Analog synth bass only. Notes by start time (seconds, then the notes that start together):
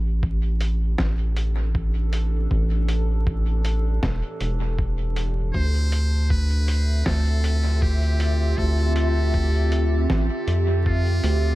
Already playing: A1
0.99 A1
2.51 A1
4.03 E1
4.41 E1
5.55 D2
7.06 D2
8.58 D2
10.10 A1
10.48 F2
11.24 D2